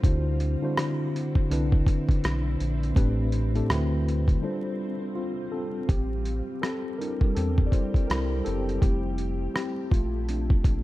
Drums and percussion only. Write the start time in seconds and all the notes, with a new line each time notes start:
0.04 kick, closed hi-hat
0.40 closed hi-hat
0.77 cross-stick, closed hi-hat
1.16 closed hi-hat
1.35 kick
1.51 closed hi-hat
1.72 kick
1.86 kick, closed hi-hat
2.09 kick, closed hi-hat
2.24 cross-stick, closed hi-hat
2.60 closed hi-hat
2.83 closed hi-hat
2.96 kick, closed hi-hat
3.32 closed hi-hat
3.55 closed hi-hat
3.70 cross-stick, closed hi-hat
4.08 closed hi-hat
4.28 kick, closed hi-hat
5.89 kick, closed hi-hat
6.25 closed hi-hat
6.63 cross-stick, closed hi-hat
7.01 closed hi-hat
7.21 kick
7.37 closed hi-hat
7.58 kick
7.72 kick, closed hi-hat
7.94 kick, closed hi-hat
8.10 cross-stick, closed hi-hat
8.46 closed hi-hat
8.69 closed hi-hat
8.82 kick, closed hi-hat
9.18 closed hi-hat
9.56 cross-stick, closed hi-hat
9.91 kick, closed hi-hat
10.29 closed hi-hat
10.50 kick
10.64 kick, closed hi-hat